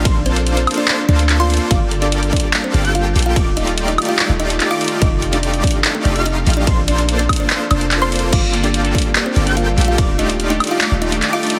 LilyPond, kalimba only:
\new Staff \with { instrumentName = "Kalimba" } { \time 4/4 \key ees \lydian \tempo 4 = 145 <d' d''>16 r16 <c' c''>8 r16 <c' c''>16 r16 <d' d''>8 r16 <d' d''>8 r16 <f' f''>8 r16 | <f' f''>8 r16 <d' d''>8 r16 <d' d''>8 r16 <c' c''>8 r16 <f' f''>8 r16 <f' f''>16~ | <f' f''>16 r16 <ees' ees''>8 r16 <ees' ees''>16 r16 <f' f''>8 r16 <ees' ees''>8 r16 <f' f''>8 r16 | <ees' ees''>8 r16 <d' d''>8 r16 <d' d''>8 r16 <a a'>8 r16 <ees' ees''>8 r16 <d' d''>16~ |
<d' d''>16 r16 <d' d''>8 r16 <d' d''>16 r16 <d' d''>8 r16 <d' d''>8 r16 <c' c''>8 r16 | <f' f''>8 r16 <d' d''>8 r16 <d' d''>8 r16 <c' c''>8 r16 <f' f''>8 r16 <f' f''>16~ | <f' f''>16 r16 <ees' ees''>8 r16 <ees' ees''>16 r16 <f' f''>8 r16 <ees' ees''>8 r16 <f' f''>8 r16 | }